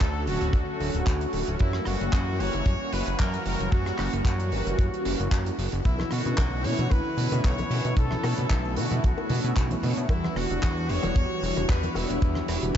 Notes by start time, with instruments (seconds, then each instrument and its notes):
Already playing: analog polysynth D3 F#3 A3 C#4 F#4, trumpet section A4
0.01 analog synth bass D2, kick, clap, closed hi-hat
0.26 analog synth bass D1, analog polysynth D3 F#3 A3 C#4 F#4, trumpet section F#4, open hi-hat
0.41 analog synth bass D1, closed hi-hat
0.53 analog synth bass D2, trumpet section F#4, kick, closed hi-hat
0.80 analog synth bass D1, open hi-hat
0.95 analog synth bass D1, closed hi-hat
1.06 analog synth bass D2, kick, clap, closed hi-hat
1.21 closed hi-hat
1.32 analog synth bass D1, analog polysynth D3 F#3 A3 C#4 F#4, open hi-hat
1.47 analog synth bass D1, closed hi-hat
1.59 analog synth bass F#2, analog polysynth E3 G3 A#3 C#4 F#4, trumpet section E4, kick, closed hi-hat
1.73 cross-stick
1.85 analog synth bass F#1, trumpet section F#4, cross-stick, open hi-hat
2.01 analog synth bass F#1, closed hi-hat
2.13 analog synth bass F#2, kick, clap, closed hi-hat
2.39 analog synth bass F#1, analog polysynth E3 G3 A#3 C#4 F#4, trumpet section C#5, open hi-hat
2.53 analog synth bass F#1, closed hi-hat
2.66 analog synth bass F#2, kick, closed hi-hat
2.92 analog synth bass F#1, trumpet section B4, open hi-hat
3.07 analog synth bass F#1, closed hi-hat
3.19 analog synth bass F#2, trumpet section A#4, kick, clap, closed hi-hat
3.34 closed hi-hat
3.45 analog synth bass F#1, analog polysynth E3 G3 A#3 C#4 F#4, trumpet section A#4, open hi-hat
3.60 analog synth bass F#1, closed hi-hat
3.72 analog synth bass F#2, analog polysynth E3 G3 A#3 C#4 F#4, trumpet section F#4, kick, closed hi-hat
3.86 cross-stick, closed hi-hat
3.99 analog synth bass F#1, cross-stick, clap, open hi-hat
4.13 analog synth bass F#1, closed hi-hat
4.25 analog synth bass F#2, trumpet section F#4, kick, clap, closed hi-hat
4.40 closed hi-hat
4.51 analog synth bass F#1, analog polysynth E3 G3 A#3 C#4 F#4, open hi-hat
4.66 analog synth bass F#1, closed hi-hat
4.79 analog synth bass F#2, kick, closed hi-hat
4.94 closed hi-hat
5.05 analog synth bass F#1, open hi-hat
5.19 analog synth bass F#1, closed hi-hat
5.31 analog synth bass F#2, kick, clap, closed hi-hat
5.46 closed hi-hat
5.58 analog synth bass F#1, open hi-hat
5.72 analog synth bass F#1, closed hi-hat
5.84 analog synth bass B1, analog polysynth D3 A3 B3 C#4 E4, trumpet section E4, kick, closed hi-hat, cabasa
5.99 cross-stick, high bongo, high conga
6.11 analog synth bass B2, trumpet section F#4, cross-stick, open hi-hat, cabasa
6.25 analog synth bass B2, closed hi-hat, low conga, cabasa
6.38 analog synth bass B1, kick, clap, closed hi-hat, high bongo, high conga, cabasa
6.53 cabasa
6.64 analog synth bass B2, analog polysynth D3 A3 B3 C#4 E4, trumpet section C#5, open hi-hat, cabasa
6.79 analog synth bass B2, closed hi-hat, high conga, cabasa
6.91 analog synth bass B1, trumpet section B4, kick, closed hi-hat, high bongo, cabasa
7.05 cabasa
7.17 analog synth bass B2, open hi-hat, high conga, cabasa
7.32 analog synth bass B2, closed hi-hat, high bongo, low conga, cabasa
7.44 analog synth bass B1, trumpet section C#5, kick, clap, closed hi-hat
7.58 closed hi-hat, high conga, cabasa
7.70 analog synth bass B2, analog polysynth D3 A3 B3 C#4 E4, open hi-hat, cabasa
7.85 analog synth bass B2, closed hi-hat, high bongo, cabasa
7.96 analog synth bass B1, analog polysynth D3 A3 B3 C#4 E4, trumpet section A4, kick, closed hi-hat, cabasa
8.11 cross-stick, high conga
8.23 analog synth bass B2, cross-stick, open hi-hat, high bongo, cabasa
8.38 analog synth bass B2, closed hi-hat, low conga, cabasa
8.50 analog synth bass B1, kick, clap, closed hi-hat, high conga, cabasa
8.65 cabasa
8.76 analog synth bass B2, analog polysynth D3 A3 B3 C#4 E4, trumpet section F#4, open hi-hat, high bongo, cabasa
8.91 analog synth bass B2, closed hi-hat, high conga, cabasa
9.04 analog synth bass B1, trumpet section F#4, kick, closed hi-hat, cabasa
9.18 high bongo, cabasa
9.29 analog synth bass B2, open hi-hat, high conga, low conga, cabasa
9.44 analog synth bass B2, closed hi-hat, cabasa
9.56 analog synth bass B1, kick, clap, closed hi-hat, cabasa
9.71 closed hi-hat, high bongo, high conga, cabasa
9.82 analog synth bass B2, analog polysynth D3 A3 B3 C#4 E4, open hi-hat, low conga, cabasa
9.97 analog synth bass B2, closed hi-hat, cabasa
10.09 analog synth bass E2, analog polysynth E3 G3 B3 D4 F#4, trumpet section E4, kick, closed hi-hat, high bongo, cabasa
10.24 cross-stick, high conga
10.36 analog synth bass E1, trumpet section F#4, cross-stick, open hi-hat, cabasa
10.50 analog synth bass E1, closed hi-hat, low conga, cabasa
10.62 analog synth bass E2, kick, clap, closed hi-hat, high bongo, high conga, cabasa
10.77 cabasa
10.88 analog synth bass E1, analog polysynth E3 G3 B3 D4 F#4, trumpet section C#5, open hi-hat, cabasa
11.03 analog synth bass E1, closed hi-hat, high bongo, high conga, cabasa
11.15 analog synth bass E2, kick, closed hi-hat, cabasa
11.30 cabasa
11.42 analog synth bass E1, open hi-hat, high conga, cabasa
11.56 analog synth bass E1, closed hi-hat, high bongo, low conga, cabasa
11.69 analog synth bass E2, trumpet section B4, kick, clap, closed hi-hat, cabasa
11.83 closed hi-hat, high conga, cabasa
11.95 analog synth bass E1, analog polysynth E3 G3 B3 D4 F#4, trumpet section E4, open hi-hat, high bongo, cabasa
12.10 analog synth bass E1, closed hi-hat, cabasa
12.21 analog synth bass E2, analog polysynth E3 G3 B3 D4 F#4, kick, closed hi-hat, cabasa
12.35 cross-stick, high conga, cabasa
12.48 analog synth bass E1, cross-stick, open hi-hat, high bongo, cabasa
12.62 analog synth bass E1, closed hi-hat, low conga, cabasa